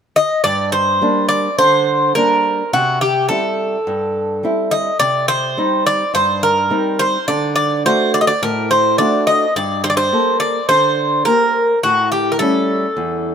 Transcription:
0.16 D#5
0.44 G2 D5
0.72 C5
1.01 G3 A#3 D4
1.29 D5
1.58 D3 C5
2.15 G3 A#3 D4 A#4
2.73 C3 F#4
3.01 G4
3.29 G3 C4 E4 A4
3.87 G2
4.43 G3 C4 E4
4.71 D#5
4.99 C3 D5
5.28 C5
5.57 G3 C4 D#4
5.86 D5
6.14 G2 C5
6.43 A#4
6.70 G3 C4 D#4
6.99 C5
7.28 D3 D5
7.56 D5
7.85 A3 D4 F#4 C5
8.14 D5
8.21 D#5
8.27 D5
8.42 A2 A#4
8.71 C5
8.98 A3 D4 F#4 D5
9.27 D#5
9.56 G2 D5
9.84 C5
9.90 D5
9.97 C5
10.12 A#3 G4 A4
10.40 D5
10.69 D3 C5
11.25 A#3 G4 A#4
11.83 A2 F#4
12.12 G4
12.32 A#4
12.39 G3 A3 C#4 A4
12.97 E2

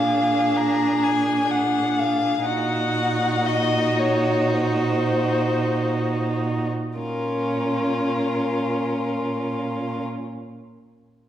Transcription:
Already playing: A#2 D4 G#4 F5
0.56 A#5
1.03 G#5
1.50 F#5
1.99 F5
2.44 A#2 D#4 F#4 F#5
3.46 D#5
3.99 C#5
4.53 C5
6.98 A#2 C#4 F4 A#4

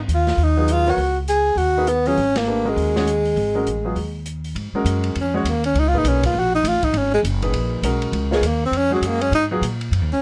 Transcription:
0.08 D#2, closed hi-hat
0.14 F4
0.27 snare, open hi-hat
0.37 D#2, open hi-hat
0.44 D#4
0.57 F#3 B3 F4 G#4
0.68 closed hi-hat
0.72 F4
0.86 B3 F4 F#4 A#4 C#5, open hi-hat
0.97 C#2, open hi-hat
1.28 G#4, closed hi-hat
1.56 D#2 F#4, open hi-hat
1.77 A#3 D#4 G#4 B4
1.87 B3, closed hi-hat
2.06 F#3 B3 C#4 F4 G#4, open hi-hat
2.17 G#1, open hi-hat
2.36 A#3, snare, ride
2.47 A3 D4 G4 B4
2.65 G#3 C#4 F#4 A#4
2.69 G#3
2.76 D#2, open hi-hat
2.96 G#3 C#4 F#4 C#5, snare
3.07 closed hi-hat
3.25 open hi-hat
3.36 G#1, open hi-hat
3.55 G#3 C#4 F#4 A#4
3.66 A1, closed hi-hat
3.84 F#3 B3 F4 G#4
3.95 D#2, open hi-hat
4.26 closed hi-hat
4.44 open hi-hat
4.55 G#2, ride
4.73 G#3 C#4 F#4 A#4, muted upright bass stroke
4.85 F#2, hi-hat pedal, ride
5.04 ride
5.15 F2, ride
5.20 C#4
5.34 F#3 G#3 C#4 F#4 C#5
5.44 D#2 A#3, hi-hat pedal, ride
5.64 C#4, ride
5.74 C#2, ride
5.79 D#4
5.88 F4
5.93 A#2 D#4 G#4 B4, kick
5.98 D#4
6.04 B1, hi-hat pedal, ride
6.08 C#4
6.23 F4, kick, ride
6.33 A#1
6.39 F#4
6.55 D#4
6.63 A1, hi-hat pedal, ride
6.68 F4
6.82 D#4, muted upright bass stroke, kick, ride
6.93 G#1, ride
6.97 C#4
7.14 G#3
7.23 F#1, hi-hat pedal, ride
7.42 A#2 D#4 G#4 B4, ride
7.52 A#1, ride
7.82 B1 G#3 C#4 F#4 A#4, hi-hat pedal, ride
8.02 ride
8.12 C#2, ride
8.31 G#3 B3 F4 A#4 C#5, snare
8.41 D#2, hi-hat pedal, ride
8.47 A#3
8.65 C4
8.71 F2, ride
8.77 C#4
8.90 F#3 G#3 C#4 F#4 G#4
9.01 F#2, hi-hat pedal, ride
9.07 A#3
9.21 C#4, ride
9.32 G#2 D#4, ride
9.51 F#3 B3 F4 G#4
9.61 A#2, hi-hat pedal, ride
9.81 ride
9.91 F#2, ride
10.02 D#2
10.11 C#2 C#4

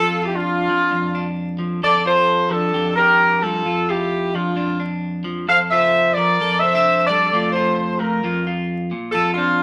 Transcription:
Already playing: F4 A4
0.00 F2 F4
0.23 E4 F4 G4
0.35 D4 F4
0.69 F3
0.92 F2, muted clean electric guitar stroke
1.15 D4
1.59 F3
1.83 F2 A4 D5
2.05 F4 A4 C5
2.50 F3 D4 A4
2.74 F2 G4
2.96 D4 G4 A#4
3.42 G3 F4 A4
3.65 F2 F4
3.89 E4 F4 G4
4.35 F3 D4 F4
4.56 F2 D4
4.80 D4
5.24 F3
5.48 F2 A4 C5 F5
5.71 F4 C5 E5
6.13 F3 A#4 D5
6.41 F2 A4
6.59 C4 C5 E5
6.75 D4
7.06 G3 A4 D5
7.32 F2 A3 F4, muted clean electric guitar stroke
7.51 A4 C5
7.55 F4
7.98 A3 F4 A#4
8.23 F2 F4
8.47 F4
8.91 A#2
9.12 F2 F4 A4
9.33 D4 F4
9.38 C4

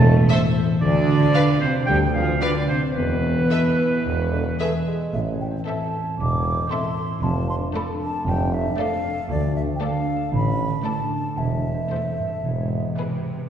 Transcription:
Already playing: E1 A2 A3 E4 A4 C5 A5
0.03 E3
0.29 E4 A4 C5 E5
0.56 C5
0.81 D2 D3 D4 D5
1.09 D4
1.34 F4 B4 F5
1.60 C3 C4 B4 C5
1.86 D2 D3 G3 G4 G5
2.13 F3 D4 F4 F5
2.40 D3 D4 F4 B4 D5 F5
2.68 C3 C4 B4 C5
2.95 E1 E2 B2 E3 B3 B4
3.23 B3
3.50 E3 A4 B4 E5
3.77 E5
4.04 E1 E2 E3
4.32 D3 B3
4.59 A3 G#4 B4 E5
4.87 G#3 E5
5.14 A1 A2 E5
5.33 E3
5.41 G5
5.51 C4
5.67 C4 E4 A4 E5 A5
5.86 A4
6.03 E4
6.20 E1 E2 A2 D6
6.37 E3
6.54 C4
6.71 C4 E4 A4 E5 C6
6.89 A4
7.06 E4
7.23 F1 F2 F3 A5
7.41 A3
7.50 C6
7.57 D4
7.75 A3 A4 D5 B5
7.92 D4
8.02 A5
8.09 A4
8.26 F1 F2 F3 G5
8.44 A3
8.54 E5
8.61 D4
8.78 A3 A4 D5 F5
8.95 D4
9.12 A4
9.30 D2 D3 D5
9.47 A3
9.56 E5
9.64 D4
9.76 G5
9.81 A3 A4 D5 F5
9.99 D4
10.16 A4
10.33 A1 A2 D3 B5
10.50 A3
10.68 D4
10.85 A3 A4 D5 A5
11.03 D4
11.20 A4
11.38 E1 E2 E3 E5
11.56 A3
11.74 C4
11.91 E2 A3 A4 C5
12.09 C4
12.18 G2
12.27 A4
12.44 E1 G#2 E3
12.62 G#3
12.80 B3
12.97 C3 B3 G#4 B4
13.15 G#4
13.33 B4

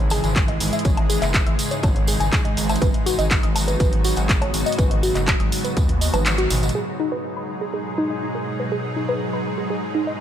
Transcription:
Already playing: G#1 G#2 C#3 E3 G#3 E4 G#4
0.10 G#4, open hi-hat, tambourine, low woodblock
0.24 G#1 G#5, closed hi-hat, tambourine
0.36 kick, clap, closed hi-hat, tambourine
0.48 D#5, closed hi-hat
0.60 G#1, open hi-hat, tambourine
0.73 E5, closed hi-hat, tambourine
0.79 closed hi-hat
0.85 G#1 D#4 C#5, kick, closed hi-hat, tambourine
0.97 closed hi-hat, low woodblock
1.10 G#4, open hi-hat, tambourine
1.22 F#1 E5, clap, closed hi-hat, tambourine
1.34 kick, clap, closed hi-hat, tambourine
1.46 G#1 E6, closed hi-hat
1.59 open hi-hat, tambourine
1.71 C#5, closed hi-hat, tambourine
1.83 G#1 C#5, kick, closed hi-hat, tambourine, low woodblock
1.96 closed hi-hat
2.07 G#4, open hi-hat, tambourine
2.20 G#1 G#5, closed hi-hat, tambourine
2.32 kick, clap, closed hi-hat, tambourine
2.45 D#5, closed hi-hat
2.57 G#1, open hi-hat, tambourine
2.69 E5, closed hi-hat, tambourine, low woodblock
2.76 closed hi-hat
2.81 G#1 F#3 B3 F#4 B4, kick, closed hi-hat, tambourine
2.94 closed hi-hat
3.06 F#4, open hi-hat, tambourine
3.19 G#1 D#5, closed hi-hat, tambourine
3.31 kick, clap, closed hi-hat, tambourine
3.43 G#1 D#6, closed hi-hat
3.56 open hi-hat, tambourine, low woodblock
3.68 B4, closed hi-hat, tambourine
3.80 G#1 B4, kick, closed hi-hat, tambourine
3.93 closed hi-hat
4.04 F#4, open hi-hat, tambourine
4.16 G#1 F#5, closed hi-hat, tambourine
4.29 kick, clap, closed hi-hat, tambourine
4.41 C#5, closed hi-hat, low woodblock
4.54 G#1, open hi-hat, tambourine
4.66 D#5, closed hi-hat, tambourine
4.72 closed hi-hat
4.78 G#1 B4, kick, closed hi-hat, tambourine
4.91 closed hi-hat
5.03 F#4, open hi-hat, tambourine
5.15 F#1 D#5, clap, closed hi-hat, tambourine
5.27 kick, clap, closed hi-hat, tambourine, low woodblock
5.40 G#1 D#6, closed hi-hat
5.52 open hi-hat, tambourine
5.64 B4, closed hi-hat, tambourine
5.77 D#2 B4, kick, closed hi-hat, high tom, tambourine
5.89 closed hi-hat, high tom
6.01 D#5, open hi-hat, tambourine
6.14 G#1 B4, closed hi-hat, mid tom, tambourine, low woodblock
6.26 clap, closed hi-hat, mid tom, tambourine
6.38 F#4, closed hi-hat
6.50 G#1, mid tom, open hi-hat, tambourine
6.63 D#5, closed hi-hat, mid tom, tambourine
6.69 closed hi-hat
6.75 G#2 B2 F#3 G#3 D#4 G#4
7.00 D#4
7.12 B4
7.37 B5
7.61 G#4
7.74 G#4
7.98 D#4
8.10 D#5
8.35 A#4
8.60 B4
8.72 G#4
8.96 D#4
9.09 B4
9.33 B5
9.58 G#4
9.70 G#4
9.95 D#4
10.07 D#5

